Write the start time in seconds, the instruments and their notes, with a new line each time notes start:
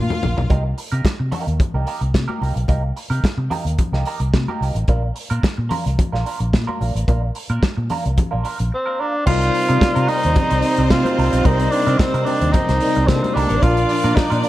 Already playing: tine electric piano A#2 F3 D4 A#4 F5, french horn section F3 A#3 F4, string section F4 F5
0.10 muted clean electric guitar stroke, floor tom, high conga
0.23 fingered electric bass A#1, floor tom
0.37 fingered electric bass B1, muted clean electric guitar stroke, floor tom
0.50 fingered electric bass C2, clean electric guitar A#3 D#4 G4 A#4, kick, closed hi-hat, muted conga
0.64 muted clean electric guitar stroke
0.78 muted clean electric guitar stroke, open hi-hat
0.92 fingered electric bass C3, clean electric guitar A#3 D#4 G4 A#4, closed hi-hat
1.05 kick, snare, closed hi-hat, high conga
1.19 fingered electric bass C3, muted clean electric guitar stroke
1.32 clean electric guitar A#3 D#4 G4 A#4, open hi-hat, muted conga, low conga
1.47 fingered electric bass D#2, muted clean electric guitar stroke, closed hi-hat
1.59 muted clean electric guitar stroke, kick, closed hi-hat, muted conga, low conga
1.74 fingered electric bass C2, clean electric guitar A#3 D#4 G4 A#4
1.86 clean electric guitar A#3 D#4 G4 A#4, open hi-hat
2.01 fingered electric bass C2, muted clean electric guitar stroke, closed hi-hat
2.14 fingered electric bass C3, muted clean electric guitar stroke, kick, snare, closed hi-hat, high conga
2.28 clean electric guitar A#3 D#4 G4 A#4, high conga
2.41 fingered electric bass C2, clean electric guitar A#3 D#4 G4 A#4, open hi-hat, high conga
2.55 fingered electric bass B1, muted clean electric guitar stroke, closed hi-hat
2.68 fingered electric bass C2, clean electric guitar A#3 D#4 G4 A#4, kick, closed hi-hat, muted conga
2.83 muted clean electric guitar stroke
2.96 muted clean electric guitar stroke, open hi-hat
3.10 fingered electric bass C3, clean electric guitar A#3 D#4 G4 A#4, closed hi-hat
3.24 muted fingered electric bass stroke, kick, snare, closed hi-hat, high conga
3.38 fingered electric bass C3, muted clean electric guitar stroke
3.50 clean electric guitar A#3 D#4 G4 A#4, open hi-hat, low conga
3.65 fingered electric bass D#2, muted clean electric guitar stroke, closed hi-hat
3.78 muted clean electric guitar stroke, kick, closed hi-hat, muted conga, low conga
3.92 fingered electric bass C2, clean electric guitar A#3 D#4 G4 A#4, snare
4.05 clean electric guitar A#3 D#4 G4 A#4, open hi-hat
4.20 fingered electric bass C2, muted clean electric guitar stroke, closed hi-hat
4.33 fingered electric bass C3, muted clean electric guitar stroke, kick, snare, closed hi-hat, high conga
4.48 clean electric guitar A#3 D#4 G4 A#4, high conga
4.61 fingered electric bass C2, clean electric guitar A#3 D#4 G4 A#4, open hi-hat, high conga
4.75 fingered electric bass A1, muted clean electric guitar stroke, closed hi-hat
4.88 fingered electric bass A#1, clean electric guitar A#3 D4 F4 A#4, kick, closed hi-hat, muted conga
5.03 muted clean electric guitar stroke
5.15 muted clean electric guitar stroke, open hi-hat
5.30 fingered electric bass A#2, clean electric guitar A#3 D4 F4 A#4, closed hi-hat
5.43 kick, snare, closed hi-hat, high conga
5.57 fingered electric bass A#2, muted clean electric guitar stroke
5.69 clean electric guitar A#3 D4 F4 A#4, open hi-hat, low conga
5.85 fingered electric bass C2, muted clean electric guitar stroke, closed hi-hat
5.98 muted clean electric guitar stroke, kick, closed hi-hat, muted conga, low conga
6.12 fingered electric bass A#1, clean electric guitar A#3 D4 F4 A#4, snare
6.25 clean electric guitar A#3 D4 F4 A#4, open hi-hat
6.40 fingered electric bass A#1, muted clean electric guitar stroke, closed hi-hat
6.53 fingered electric bass A#2, muted clean electric guitar stroke, kick, snare, closed hi-hat, high conga
6.67 clean electric guitar A#3 D4 F4 A#4, high conga
6.80 fingered electric bass A#1, clean electric guitar A#3 D4 F4 A#4, open hi-hat, high conga
6.94 fingered electric bass A1, muted clean electric guitar stroke, closed hi-hat
7.08 fingered electric bass A#1, clean electric guitar A#3 D4 F4 A#4, kick, closed hi-hat, muted conga
7.22 muted clean electric guitar stroke
7.35 muted clean electric guitar stroke, open hi-hat
7.49 fingered electric bass A#2, clean electric guitar A#3 D4 F4 A#4, closed hi-hat
7.63 kick, snare, closed hi-hat, high conga
7.77 fingered electric bass A#2, muted clean electric guitar stroke
7.90 clean electric guitar A#3 D4 F4 A#4, open hi-hat, low conga
8.05 fingered electric bass C2, muted clean electric guitar stroke, closed hi-hat
8.17 muted clean electric guitar stroke, kick, closed hi-hat, muted conga, low conga
8.31 fingered electric bass A#1, clean electric guitar A#3 D4 F4 A#4
8.44 clean electric guitar A#3 D4 F4 A#4, open hi-hat
8.59 fingered electric bass A#1, muted clean electric guitar stroke, closed hi-hat
8.71 tenor saxophone C4, muted clean electric guitar stroke
8.86 clean electric guitar A#3 D4 F4 A#4
8.99 clean electric guitar A#3 D4 F4 A#4, tenor saxophone D4
9.14 muted clean electric guitar stroke
9.26 fingered electric bass C2, french horn section A#2 C3 G3 D#4 D5, tine electric piano C3 G3 D#4 A#4 D5, clean electric guitar G3 C4 D#4 A#4, string section C4 C5, tenor saxophone F4, kick, crash, muted conga
9.41 muted clean electric guitar stroke, closed hi-hat
9.54 muted clean electric guitar stroke, open hi-hat
9.68 fingered electric bass C3, clean electric guitar G3 C4 D#4 A#4, closed hi-hat
9.80 muted clean electric guitar stroke, kick, snare, closed hi-hat, high conga
9.95 fingered electric bass C3, clean electric guitar G3 C4 D#4 A#4, closed hi-hat
10.08 clean electric guitar G3 C4 D#4 A#4, tenor saxophone D#4, open hi-hat, muted conga
10.23 fingered electric bass D#2, muted clean electric guitar stroke, closed hi-hat
10.36 muted clean electric guitar stroke, kick, closed hi-hat, muted conga, low conga
10.50 fingered electric bass C2, muted clean electric guitar stroke, closed hi-hat
10.62 open hi-hat
10.77 fingered electric bass C2, muted clean electric guitar stroke, closed hi-hat
10.90 fingered electric bass C3, tenor saxophone F4, kick, snare, closed hi-hat, high conga
11.05 muted clean electric guitar stroke, closed hi-hat, high conga
11.18 fingered electric bass C2, clean electric guitar G3 C4 D#4 A#4, open hi-hat
11.33 fingered electric bass B1, muted clean electric guitar stroke, closed hi-hat
11.44 fingered electric bass C2, tine electric piano C3 G3 D#4 A#4 D5, clean electric guitar G3 C4 D#4 A#4, french horn section C4, tenor saxophone D#4, kick, closed hi-hat, muted conga
11.59 muted clean electric guitar stroke, closed hi-hat
11.72 tenor saxophone D4, muted clean electric guitar stroke, open hi-hat
11.87 fingered electric bass C3, clean electric guitar G3 C4 D#4 A#4, closed hi-hat
11.98 tenor saxophone C4, muted clean electric guitar stroke, kick, snare, closed hi-hat, high conga
12.14 fingered electric bass C3, clean electric guitar G3 C4 D#4 A#4, closed hi-hat
12.25 clean electric guitar G3 C4 D#4 A#4, tenor saxophone D4, open hi-hat, muted conga
12.41 fingered electric bass D#2, muted clean electric guitar stroke, closed hi-hat
12.52 tenor saxophone D#4, muted clean electric guitar stroke, kick, closed hi-hat, muted conga, low conga
12.69 fingered electric bass C2, muted clean electric guitar stroke, snare, closed hi-hat
12.80 tine electric piano C3 G3 D#4 A#4 D5, open hi-hat
12.95 fingered electric bass C2, muted clean electric guitar stroke, closed hi-hat
13.08 fingered electric bass C3, tenor saxophone C4, kick, snare, closed hi-hat, high conga
13.15 string section D3 D4
13.21 string section D#3 D#4, muted clean electric guitar stroke, closed hi-hat, high conga
13.26 string section F3 F4
13.34 fingered electric bass C2, string section G3 G4, clean electric guitar G3 C4 D#4 A#4, tenor saxophone D4, open hi-hat
13.40 string section A3 A4
13.48 fingered electric bass A1, string section A#3 A#4, muted clean electric guitar stroke, closed hi-hat
13.55 string section C4 C5
13.62 fingered electric bass A#1, tine electric piano A#2 F3 D4 A#4 F5, french horn section F3 F4, clean electric guitar A#3 D4 F4 A#4, string section D4 D5, tenor saxophone F4, kick, closed hi-hat, muted conga
13.77 muted clean electric guitar stroke, closed hi-hat
13.89 muted clean electric guitar stroke, open hi-hat
14.04 fingered electric bass A#2, clean electric guitar A#3 D4 F4 A#4, closed hi-hat
14.15 tenor saxophone D#4, muted clean electric guitar stroke, kick, snare, closed hi-hat, high conga
14.30 fingered electric bass A#2, clean electric guitar A#3 D4 F4 A#4, closed hi-hat
14.43 clean electric guitar A#3 D4 F4 A#4, tenor saxophone D4, open hi-hat, muted conga